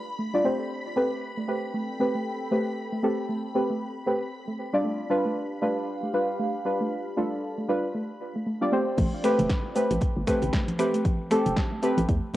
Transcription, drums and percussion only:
8.98 kick, closed hi-hat, crash, high conga, shaker
9.24 finger snap, open hi-hat, shaker
9.39 closed hi-hat, high conga, low conga, shaker
9.50 kick, snare, closed hi-hat, shaker
9.76 open hi-hat, shaker
9.91 closed hi-hat, high conga, shaker
10.01 kick, closed hi-hat, muted conga, shaker
10.27 finger snap, kick, open hi-hat, high conga, shaker
10.42 closed hi-hat, low conga, shaker
10.53 kick, snare, closed hi-hat, shaker
10.68 closed hi-hat, high conga
10.79 finger snap, open hi-hat, shaker
10.94 closed hi-hat, shaker
11.05 kick, closed hi-hat, high conga, shaker
11.31 finger snap, open hi-hat, shaker
11.46 closed hi-hat, high conga, shaker
11.56 kick, snare, closed hi-hat, shaker
11.83 open hi-hat, shaker
11.97 closed hi-hat, high conga, shaker
12.08 kick, closed hi-hat, shaker

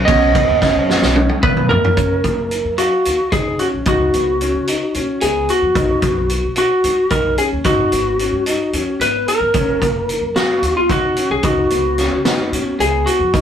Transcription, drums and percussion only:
0.08 kick, ride
0.35 kick, ride
0.62 kick, snare, ride
0.89 snare
1.02 snare
1.16 high tom
1.29 high tom
1.43 kick, mid tom
1.57 mid tom
1.70 floor tom
1.84 floor tom
1.97 kick, closed hi-hat
2.24 kick, closed hi-hat
2.51 closed hi-hat
2.78 closed hi-hat
3.05 closed hi-hat
3.32 kick, closed hi-hat
3.59 closed hi-hat
3.85 kick, closed hi-hat
4.14 closed hi-hat
4.41 closed hi-hat
4.67 closed hi-hat
4.94 closed hi-hat
5.21 closed hi-hat
5.49 closed hi-hat
5.75 kick, closed hi-hat
6.02 kick, closed hi-hat
6.29 closed hi-hat
6.56 closed hi-hat
6.84 closed hi-hat
7.10 kick, closed hi-hat
7.38 closed hi-hat
7.64 kick, closed hi-hat
7.92 closed hi-hat
8.19 closed hi-hat
8.46 closed hi-hat
8.73 closed hi-hat
9.01 closed hi-hat
9.28 closed hi-hat
9.54 kick, closed hi-hat
9.82 kick, closed hi-hat
10.09 closed hi-hat
10.36 snare, closed hi-hat
10.63 closed hi-hat
10.90 kick, closed hi-hat
11.16 closed hi-hat
11.43 kick, closed hi-hat
11.70 closed hi-hat
11.98 snare, closed hi-hat
12.25 snare, closed hi-hat
12.53 closed hi-hat
12.80 closed hi-hat
13.07 closed hi-hat
13.34 kick, closed hi-hat

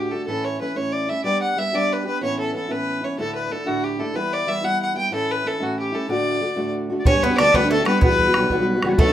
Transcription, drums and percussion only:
7.05 bodhran
7.23 bodhran
7.38 bodhran
7.54 bodhran
7.86 bodhran
8.02 bodhran
8.19 bodhran
8.34 bodhran
8.50 bodhran
8.82 bodhran
8.98 bodhran

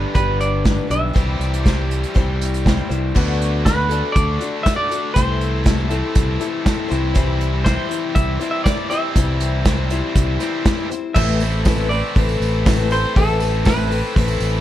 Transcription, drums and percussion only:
0.15 kick, closed hi-hat
0.41 closed hi-hat
0.65 kick, snare, closed hi-hat
0.91 closed hi-hat
1.16 kick, closed hi-hat
1.41 closed hi-hat
1.54 closed hi-hat
1.66 kick, snare, closed hi-hat
1.91 closed hi-hat
2.04 closed hi-hat
2.16 kick, closed hi-hat
2.41 closed hi-hat
2.54 closed hi-hat
2.66 kick, snare, closed hi-hat
2.91 closed hi-hat
3.16 kick, crash
3.42 closed hi-hat
3.66 kick, snare, closed hi-hat
3.91 closed hi-hat
4.16 kick, closed hi-hat
4.41 closed hi-hat
4.66 kick, snare, closed hi-hat
4.91 closed hi-hat
5.16 kick, closed hi-hat
5.41 closed hi-hat
5.66 kick, snare, closed hi-hat
5.91 closed hi-hat
6.15 kick, closed hi-hat
6.41 closed hi-hat
6.66 kick, snare, closed hi-hat
6.91 closed hi-hat
7.15 kick, closed hi-hat
7.41 closed hi-hat
7.66 kick, snare, closed hi-hat
7.91 closed hi-hat
8.15 kick, closed hi-hat
8.41 closed hi-hat
8.66 kick, snare, closed hi-hat
8.91 closed hi-hat
9.16 kick, closed hi-hat
9.40 closed hi-hat
9.65 kick, snare, closed hi-hat
9.90 closed hi-hat
10.15 kick, closed hi-hat
10.40 snare, closed hi-hat
10.65 kick, snare, closed hi-hat
10.91 closed hi-hat
11.16 kick, crash, tambourine
11.28 tambourine
11.40 open hi-hat, tambourine
11.53 tambourine
11.65 kick, snare, open hi-hat, tambourine
11.90 open hi-hat, tambourine
12.03 tambourine
12.16 kick, open hi-hat
12.29 tambourine
12.42 open hi-hat, tambourine
12.66 kick, snare, open hi-hat, tambourine
12.91 open hi-hat, tambourine
13.04 tambourine
13.16 kick, open hi-hat, tambourine
13.28 tambourine
13.40 open hi-hat, tambourine
13.53 tambourine
13.65 kick, snare, open hi-hat, tambourine
13.91 open hi-hat, tambourine
14.04 tambourine
14.16 kick, open hi-hat
14.28 tambourine
14.40 open hi-hat, tambourine

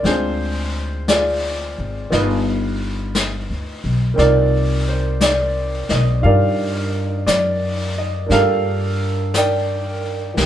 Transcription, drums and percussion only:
0.05 brush sweep, snare
1.08 brush sweep, snare, hi-hat pedal
2.12 brush sweep, snare
3.15 brush sweep, snare, hi-hat pedal
4.18 brush sweep, snare
5.21 brush sweep, snare, hi-hat pedal
5.89 snare
6.24 brush sweep
7.27 brush sweep, snare, hi-hat pedal
8.31 brush sweep, snare
9.34 brush sweep, snare, hi-hat pedal
10.37 brush sweep, snare

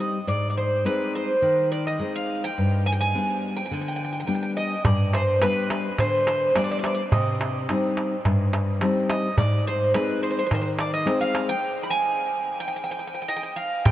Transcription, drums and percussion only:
4.85 darbuka dum
5.00 darbuka tek
5.13 darbuka tek
5.42 darbuka tek
5.70 darbuka tek
5.98 darbuka tek, darbuka dum
6.27 darbuka tek
6.56 darbuka tek
6.70 darbuka tek
6.84 darbuka tek
7.12 darbuka dum
7.27 darbuka tek
7.41 darbuka tek
7.69 darbuka tek
7.97 darbuka tek
8.25 darbuka tek, darbuka dum
8.53 darbuka tek
8.81 darbuka tek
8.96 darbuka tek
9.10 darbuka tek
9.38 darbuka dum
9.52 darbuka tek
9.94 darbuka tek
10.51 darbuka tek, darbuka dum
10.79 darbuka tek
11.07 darbuka tek
11.22 darbuka tek
11.35 darbuka tek
13.86 darbuka dum

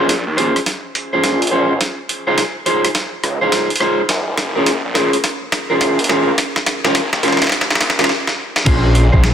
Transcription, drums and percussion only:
0.09 snare, closed hi-hat
0.38 closed hi-hat
0.56 cross-stick, closed hi-hat
0.66 snare, closed hi-hat
0.95 closed hi-hat
1.24 snare, closed hi-hat
1.42 closed hi-hat
1.47 closed hi-hat
1.81 snare, closed hi-hat
2.09 closed hi-hat
2.38 snare, closed hi-hat
2.66 closed hi-hat
2.85 cross-stick, closed hi-hat
2.95 snare, closed hi-hat
3.24 cross-stick, closed hi-hat
3.52 snare, closed hi-hat
3.70 closed hi-hat
3.76 closed hi-hat
3.81 cross-stick
4.09 snare, closed hi-hat
4.38 snare, closed hi-hat
4.66 snare, closed hi-hat
4.95 snare, closed hi-hat
5.13 closed hi-hat
5.24 snare, closed hi-hat
5.52 snare, closed hi-hat
5.81 snare, closed hi-hat
5.99 closed hi-hat
6.04 closed hi-hat
6.09 snare
6.38 snare, closed hi-hat
6.56 snare
6.66 snare, closed hi-hat
6.85 snare
6.95 snare, closed hi-hat
7.13 snare
7.23 snare, closed hi-hat
7.28 snare
7.33 snare
7.37 snare
7.42 snare, closed hi-hat
7.44 snare
7.47 snare
7.49 snare
7.52 snare, closed hi-hat
7.61 snare
7.70 snare
7.75 snare
7.81 snare, closed hi-hat
7.90 snare
7.99 snare, closed hi-hat
8.04 snare
8.09 snare
8.27 snare
8.56 snare
8.66 kick, closed hi-hat, crash
8.95 closed hi-hat
9.13 kick
9.24 snare, closed hi-hat

